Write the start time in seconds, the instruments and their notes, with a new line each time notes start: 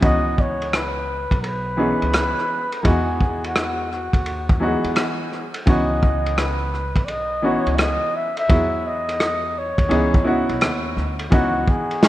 0.00 upright bass C#2, upright piano E3 B3 C#4 D#4 F#4, kick, ride
0.05 flugelhorn D#5
0.38 flugelhorn C#5, kick
0.62 ride
0.73 flugelhorn B4, cross-stick, hi-hat pedal, ride
1.31 upright bass B1, kick, ride
1.41 flugelhorn A#4, ride
1.46 flugelhorn B4
1.77 upright piano E3 B3 C#4 D#4 G#4
2.02 upright bass C#2, ride
2.13 cross-stick, hi-hat pedal, ride
2.38 cross-stick
2.72 ride
2.83 upright bass E2, upright piano E3 G#3 B3 D#4 F#4, kick, ride
2.87 flugelhorn G#4
3.21 kick
3.44 flugelhorn F#4, ride
3.56 cross-stick, hi-hat pedal, ride
3.92 flugelhorn F#4, cross-stick
4.13 upright bass D#2, kick, ride
4.26 ride
4.49 kick
4.60 upright piano E3 F#3 B3 D#4 F#4
4.67 upright piano G#3
4.84 upright bass E2, ride
4.96 cross-stick, hi-hat pedal, ride
5.32 cross-stick
5.54 ride
5.66 upright bass C#2, upright piano E3 B3 C#4 D#4 F#4, flugelhorn D#5, kick, ride
6.03 kick
6.26 ride
6.38 flugelhorn B4, cross-stick, hi-hat pedal, ride
6.74 cross-stick
6.96 upright bass B1, kick, ride
7.05 flugelhorn D5, ride
7.10 flugelhorn D#5
7.42 upright piano E3 B3 C#4 D#4 F#4, flugelhorn C#5
7.66 upright bass C#2, ride
7.75 flugelhorn E5, cross-stick, hi-hat pedal, ride
7.80 flugelhorn D#5
8.16 flugelhorn E5
8.37 flugelhorn E5, ride
8.48 upright bass E2, upright piano F#3 B3 E4 F#4 G#4, kick, ride
8.87 flugelhorn D#5
9.09 cross-stick, ride
9.20 cross-stick, hi-hat pedal, ride
9.58 flugelhorn C#5
9.78 upright bass D#2, kick, ride
9.89 upright bass C#2, upright piano E3 B3 C#4 D#4 G#4, ride
10.14 kick
10.24 upright piano B3 C#4 D#4 E4 F#4
10.49 upright bass B1, ride
10.61 upright bass D#2, cross-stick, hi-hat pedal, ride
10.97 upright bass D2, cross-stick
11.19 ride
11.30 upright bass C#2, upright piano E3 B3 C#4 D#4 F#4, flugelhorn F#4, kick, ride
11.68 flugelhorn G#4, kick
11.91 ride
12.03 snare, hi-hat pedal, ride